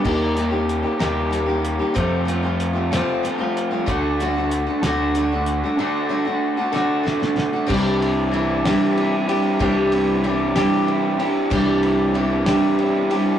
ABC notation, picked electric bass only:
X:1
M:6/8
L:1/8
Q:3/8=63
K:Clyd
V:1 name="Picked electric bass" clef=bass
_E,,3 E,,3 | =F,,4 z2 | D,,3 D,,3 | z6 |
C,,4 z2 | C,,4 z2 | C,,4 z2 |]